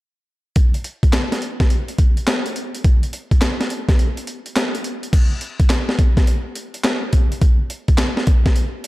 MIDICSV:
0, 0, Header, 1, 2, 480
1, 0, Start_track
1, 0, Tempo, 571429
1, 470, Time_signature, 4, 2, 24, 8
1, 7452, End_track
2, 0, Start_track
2, 0, Title_t, "Drums"
2, 468, Note_on_c, 9, 42, 67
2, 470, Note_on_c, 9, 36, 106
2, 552, Note_off_c, 9, 42, 0
2, 554, Note_off_c, 9, 36, 0
2, 623, Note_on_c, 9, 42, 52
2, 707, Note_off_c, 9, 42, 0
2, 709, Note_on_c, 9, 42, 74
2, 793, Note_off_c, 9, 42, 0
2, 865, Note_on_c, 9, 36, 84
2, 866, Note_on_c, 9, 42, 46
2, 947, Note_on_c, 9, 39, 72
2, 949, Note_off_c, 9, 36, 0
2, 950, Note_off_c, 9, 42, 0
2, 950, Note_on_c, 9, 38, 91
2, 952, Note_on_c, 9, 42, 64
2, 1031, Note_off_c, 9, 39, 0
2, 1034, Note_off_c, 9, 38, 0
2, 1036, Note_off_c, 9, 42, 0
2, 1110, Note_on_c, 9, 38, 63
2, 1110, Note_on_c, 9, 42, 60
2, 1191, Note_off_c, 9, 42, 0
2, 1191, Note_on_c, 9, 42, 56
2, 1194, Note_off_c, 9, 38, 0
2, 1275, Note_off_c, 9, 42, 0
2, 1344, Note_on_c, 9, 36, 90
2, 1345, Note_on_c, 9, 38, 59
2, 1346, Note_on_c, 9, 42, 42
2, 1428, Note_off_c, 9, 36, 0
2, 1429, Note_off_c, 9, 38, 0
2, 1430, Note_off_c, 9, 42, 0
2, 1430, Note_on_c, 9, 42, 75
2, 1514, Note_off_c, 9, 42, 0
2, 1583, Note_on_c, 9, 42, 47
2, 1667, Note_off_c, 9, 42, 0
2, 1667, Note_on_c, 9, 42, 73
2, 1668, Note_on_c, 9, 36, 86
2, 1751, Note_off_c, 9, 42, 0
2, 1752, Note_off_c, 9, 36, 0
2, 1823, Note_on_c, 9, 42, 50
2, 1907, Note_off_c, 9, 42, 0
2, 1908, Note_on_c, 9, 39, 89
2, 1909, Note_on_c, 9, 42, 78
2, 1911, Note_on_c, 9, 38, 110
2, 1992, Note_off_c, 9, 39, 0
2, 1993, Note_off_c, 9, 42, 0
2, 1995, Note_off_c, 9, 38, 0
2, 2064, Note_on_c, 9, 42, 51
2, 2148, Note_off_c, 9, 42, 0
2, 2149, Note_on_c, 9, 42, 68
2, 2233, Note_off_c, 9, 42, 0
2, 2306, Note_on_c, 9, 42, 55
2, 2389, Note_off_c, 9, 42, 0
2, 2389, Note_on_c, 9, 42, 67
2, 2390, Note_on_c, 9, 36, 111
2, 2473, Note_off_c, 9, 42, 0
2, 2474, Note_off_c, 9, 36, 0
2, 2546, Note_on_c, 9, 42, 54
2, 2629, Note_off_c, 9, 42, 0
2, 2629, Note_on_c, 9, 42, 71
2, 2713, Note_off_c, 9, 42, 0
2, 2783, Note_on_c, 9, 36, 81
2, 2785, Note_on_c, 9, 42, 48
2, 2866, Note_on_c, 9, 39, 72
2, 2867, Note_off_c, 9, 36, 0
2, 2869, Note_off_c, 9, 42, 0
2, 2870, Note_on_c, 9, 38, 95
2, 2871, Note_on_c, 9, 42, 63
2, 2950, Note_off_c, 9, 39, 0
2, 2954, Note_off_c, 9, 38, 0
2, 2955, Note_off_c, 9, 42, 0
2, 3029, Note_on_c, 9, 38, 65
2, 3030, Note_on_c, 9, 42, 55
2, 3109, Note_off_c, 9, 42, 0
2, 3109, Note_on_c, 9, 42, 61
2, 3113, Note_off_c, 9, 38, 0
2, 3193, Note_off_c, 9, 42, 0
2, 3264, Note_on_c, 9, 36, 93
2, 3267, Note_on_c, 9, 38, 66
2, 3268, Note_on_c, 9, 42, 43
2, 3348, Note_off_c, 9, 36, 0
2, 3351, Note_off_c, 9, 38, 0
2, 3352, Note_off_c, 9, 42, 0
2, 3353, Note_on_c, 9, 42, 72
2, 3437, Note_off_c, 9, 42, 0
2, 3505, Note_on_c, 9, 42, 52
2, 3589, Note_off_c, 9, 42, 0
2, 3589, Note_on_c, 9, 42, 70
2, 3673, Note_off_c, 9, 42, 0
2, 3745, Note_on_c, 9, 42, 48
2, 3829, Note_off_c, 9, 42, 0
2, 3831, Note_on_c, 9, 39, 82
2, 3832, Note_on_c, 9, 42, 81
2, 3834, Note_on_c, 9, 38, 105
2, 3915, Note_off_c, 9, 39, 0
2, 3916, Note_off_c, 9, 42, 0
2, 3918, Note_off_c, 9, 38, 0
2, 3988, Note_on_c, 9, 42, 51
2, 4068, Note_off_c, 9, 42, 0
2, 4068, Note_on_c, 9, 42, 75
2, 4152, Note_off_c, 9, 42, 0
2, 4226, Note_on_c, 9, 42, 52
2, 4309, Note_on_c, 9, 36, 111
2, 4310, Note_off_c, 9, 42, 0
2, 4310, Note_on_c, 9, 42, 75
2, 4311, Note_on_c, 9, 49, 88
2, 4393, Note_off_c, 9, 36, 0
2, 4394, Note_off_c, 9, 42, 0
2, 4395, Note_off_c, 9, 49, 0
2, 4545, Note_on_c, 9, 42, 79
2, 4629, Note_off_c, 9, 42, 0
2, 4700, Note_on_c, 9, 42, 50
2, 4701, Note_on_c, 9, 36, 85
2, 4784, Note_off_c, 9, 42, 0
2, 4784, Note_on_c, 9, 39, 77
2, 4785, Note_off_c, 9, 36, 0
2, 4787, Note_on_c, 9, 38, 90
2, 4788, Note_on_c, 9, 42, 68
2, 4868, Note_off_c, 9, 39, 0
2, 4871, Note_off_c, 9, 38, 0
2, 4872, Note_off_c, 9, 42, 0
2, 4946, Note_on_c, 9, 38, 71
2, 5029, Note_on_c, 9, 36, 89
2, 5030, Note_off_c, 9, 38, 0
2, 5030, Note_on_c, 9, 42, 63
2, 5113, Note_off_c, 9, 36, 0
2, 5114, Note_off_c, 9, 42, 0
2, 5183, Note_on_c, 9, 36, 91
2, 5185, Note_on_c, 9, 38, 65
2, 5187, Note_on_c, 9, 42, 47
2, 5267, Note_off_c, 9, 36, 0
2, 5269, Note_off_c, 9, 38, 0
2, 5269, Note_off_c, 9, 42, 0
2, 5269, Note_on_c, 9, 42, 82
2, 5353, Note_off_c, 9, 42, 0
2, 5506, Note_on_c, 9, 42, 70
2, 5590, Note_off_c, 9, 42, 0
2, 5662, Note_on_c, 9, 42, 52
2, 5746, Note_off_c, 9, 42, 0
2, 5746, Note_on_c, 9, 39, 85
2, 5746, Note_on_c, 9, 42, 82
2, 5749, Note_on_c, 9, 38, 119
2, 5830, Note_off_c, 9, 39, 0
2, 5830, Note_off_c, 9, 42, 0
2, 5833, Note_off_c, 9, 38, 0
2, 5986, Note_on_c, 9, 42, 75
2, 5989, Note_on_c, 9, 36, 83
2, 6070, Note_off_c, 9, 42, 0
2, 6073, Note_off_c, 9, 36, 0
2, 6147, Note_on_c, 9, 42, 52
2, 6228, Note_off_c, 9, 42, 0
2, 6228, Note_on_c, 9, 42, 68
2, 6229, Note_on_c, 9, 36, 108
2, 6312, Note_off_c, 9, 42, 0
2, 6313, Note_off_c, 9, 36, 0
2, 6467, Note_on_c, 9, 42, 72
2, 6551, Note_off_c, 9, 42, 0
2, 6621, Note_on_c, 9, 42, 47
2, 6622, Note_on_c, 9, 36, 82
2, 6701, Note_on_c, 9, 39, 81
2, 6704, Note_on_c, 9, 38, 96
2, 6705, Note_off_c, 9, 42, 0
2, 6705, Note_on_c, 9, 42, 64
2, 6706, Note_off_c, 9, 36, 0
2, 6785, Note_off_c, 9, 39, 0
2, 6788, Note_off_c, 9, 38, 0
2, 6789, Note_off_c, 9, 42, 0
2, 6864, Note_on_c, 9, 38, 69
2, 6945, Note_on_c, 9, 42, 59
2, 6948, Note_off_c, 9, 38, 0
2, 6949, Note_on_c, 9, 36, 86
2, 7029, Note_off_c, 9, 42, 0
2, 7033, Note_off_c, 9, 36, 0
2, 7104, Note_on_c, 9, 36, 93
2, 7105, Note_on_c, 9, 38, 67
2, 7106, Note_on_c, 9, 42, 42
2, 7187, Note_off_c, 9, 42, 0
2, 7187, Note_on_c, 9, 42, 81
2, 7188, Note_off_c, 9, 36, 0
2, 7189, Note_off_c, 9, 38, 0
2, 7271, Note_off_c, 9, 42, 0
2, 7426, Note_on_c, 9, 42, 69
2, 7452, Note_off_c, 9, 42, 0
2, 7452, End_track
0, 0, End_of_file